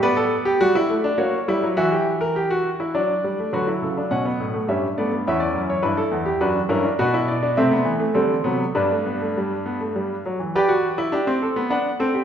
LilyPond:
<<
  \new Staff \with { instrumentName = "Grand piano" } { \time 3/4 \key d \mixolydian \tempo 4 = 103 << { d''2 cis''4 | e''2 d''4 | b'8 a'8 fis''4 e''8 d''8 | e''16 d''8 cis''16 b'16 a'8 g'16 b'8 ais'8 |
\key g \major b'8 d''8 e''4 a'4 | b'2~ b'8 r8 | d''2 fis''4 | } \\ { b'16 a'8 g'16 fis'16 e'8 d'16 fis'8 e'8 | fis'16 g'8 ais'16 g'16 fis'8 e'16 d'4 | fis'16 e'8 d'16 cis'16 b8 a16 cis'8 b8 | e'4 r4 fis'8 e'16 d'16 |
fis'16 e'8 d'16 c'16 b8 a16 c'8 b8 | d'2~ d'8 r8 | b'4 g'8 a'8 b'8 a'16 g'16 | } >> }
  \new Staff \with { instrumentName = "Grand piano" } { \clef bass \time 3/4 \key d \mixolydian << { b4 g8 a8 ais8 g16 fis16 | e2 fis8 g16 a16 | fis2 g8 a16 b16 | cis'4 e'4 d'8 cis'8 |
\key g \major b4 a4 g8 fis8 | g16 a16 b16 a16 g8 b16 a16 g8 fis16 e16 | g'16 fis'8 e'16 d'16 c'8 b16 d'8 c'8 | } \\ { r2. | r2. | d8 cis8 b,8 a,8 g,4 | e,8 fis,8 g,8 e,8 fis,8 g,8 |
b,4 c8 e8 d8 c8 | g,2~ g,8 r8 | r2. | } >> }
>>